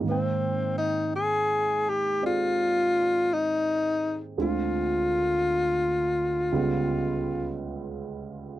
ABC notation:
X:1
M:4/4
L:1/16
Q:"Swing" 1/4=56
K:Ablyd
V:1 name="Tenor saxophone"
C2 E2 A2 G2 F4 E3 z | F12 z4 |]
V:2 name="Grand piano"
[A,,E,B,Cg]8 [CGAd]8 | [D,,D,A,CF]8 [_D,,_D,G,_CF]8 |]